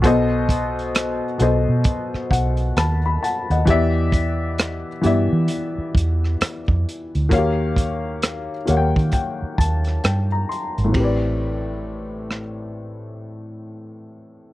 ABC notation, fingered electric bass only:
X:1
M:4/4
L:1/16
Q:"Swing 16ths" 1/4=66
K:Ephr
V:1 name="Fingered electric bass" clef=bass
B,,,4- B,,, z B,,, B,, z2 B,,,2 ^D,,2 z D,, | E,,4- E,, z G,, E, z2 E,,2 z F,, z D,, | ^D,,4- D,, z D,, ^D, z2 D,,2 G,,2 z ^G,,, | A,,,16 |]